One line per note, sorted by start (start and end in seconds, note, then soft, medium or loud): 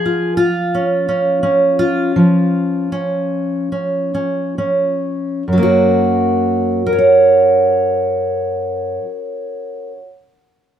0.00 2.10 F3 medium
0.00 0.36 G#4 medium
0.06 0.36 F4 soft
0.37 1.77 F4 medium
0.75 1.08 C#4 soft
1.09 1.42 C#4 soft
1.43 2.92 C#4 medium
1.79 5.48 F4 medium
2.16 5.42 F3 medium
2.92 3.71 C#4 soft
3.72 4.13 C#4 soft
4.14 4.57 C#4 soft
4.58 5.42 C#4 soft
5.48 8.98 F#2 soft
5.53 9.03 F#3 soft
5.58 6.86 A#3 soft
5.63 6.80 F#4 medium
6.87 9.91 A#4 medium
6.93 9.97 C#5 medium
6.98 10.03 F#5 medium